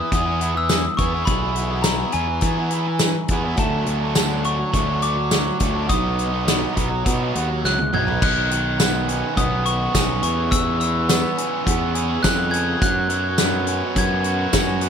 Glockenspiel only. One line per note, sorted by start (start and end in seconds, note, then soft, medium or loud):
0.00 0.14 D#6 medium
0.15 0.58 D#6 medium
0.57 1.01 E6 loud
0.97 1.28 C#6 medium
1.25 1.86 B5 medium
1.82 1.96 A#5 medium
2.13 2.96 G#5 medium
3.59 4.42 A5 medium
4.45 4.73 C#6 medium
4.75 5.01 C#6 medium
5.03 5.92 D6 loud
5.89 7.59 D#6 loud
7.65 7.94 F#6 medium
7.94 8.20 G#6 medium
8.23 9.41 F#6 loud
9.37 9.64 D#6 medium
9.66 10.22 C#6 medium
10.23 10.53 C#6 medium
10.51 10.79 E6 medium
10.80 11.91 E6 medium
12.23 12.50 F#6 medium
12.51 12.82 G#6 loud
12.82 14.00 F#6 loud
13.98 14.79 G#6 medium